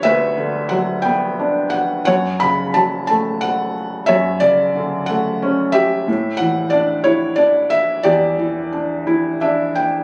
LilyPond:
<<
  \new Staff \with { instrumentName = "Felt piano" } { \time 6/8 \key d \major \tempo 4. = 60 << { e''4 fis''8 g''4 fis''8 | fis''8 b''8 a''8 a''8 fis''4 | e''8 d''4 fis''4 e''8~ | e''8 fis''8 d''8 cis''8 d''8 e''8 |
d''2 e''8 g''8 | } \\ { b'4. r4. | cis''4. r4. | cis''4. r4 g'8~ | g'4 r2 |
g'2 r4 | } >> }
  \new Staff \with { instrumentName = "Felt piano" } { \clef bass \time 6/8 \key d \major <d, b d'>8 d8 fis8 b8 d'4 | fis,8 cis8 fis8 a4. | fis,8 cis8 d8 a8 cis'4 | a,8 e8 d'8 e'8 d'4 |
e,8 e8 d'8 e'8 d'4 | }
>>